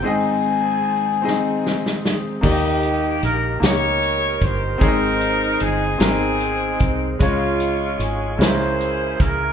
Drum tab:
CC |------------|x-----------|------------|------------|
HH |------------|--x-x-x-x-x-|x-x-x-x-x-x-|x-x-x-x-x-x-|
SD |------o-ooo-|------o-----|------o-----|------o-----|
BD |------------|o---------o-|o---------o-|o---------o-|